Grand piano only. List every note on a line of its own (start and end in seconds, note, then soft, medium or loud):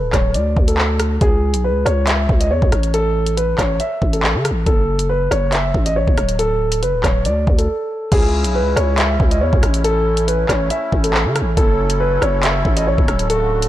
0.00 0.10 B4 medium
0.13 0.32 C#5 medium
0.35 0.66 D5 medium
0.68 1.18 A4 medium
1.21 1.62 G#4 loud
1.64 1.83 B4 medium
1.85 2.04 C#5 medium
2.07 2.38 E5 medium
2.41 2.49 D#5 medium
2.51 2.91 C#5 medium
2.94 3.34 A4 loud
3.37 3.55 B4 medium
3.58 3.77 C#5 medium
3.80 4.11 E5 medium
4.13 4.63 A4 medium
4.66 5.07 A4 loud
5.09 5.28 B4 medium
5.31 5.49 C#5 medium
5.53 5.84 E5 medium
5.86 5.95 D#5 medium
5.96 6.37 C#5 medium
6.39 6.80 A4 loud
6.82 7.01 B4 medium
7.04 7.22 C#5 medium
7.25 7.56 D5 medium
7.58 8.08 A4 medium
8.12 8.52 G#4 loud
8.55 8.73 B4 medium
8.76 8.95 C#5 medium
8.98 9.29 E5 medium
9.31 9.40 D#5 medium
9.41 9.82 C#5 medium
9.84 10.25 A4 loud
10.28 10.46 B4 medium
10.49 10.68 C#5 medium
10.71 11.02 E5 medium
11.04 11.54 A4 medium
11.57 11.98 A4 loud
12.00 12.19 B4 medium
12.22 12.40 C#5 medium
12.43 12.74 E5 medium
12.77 12.85 D#5 medium
12.87 13.27 C#5 medium
13.30 13.69 A4 loud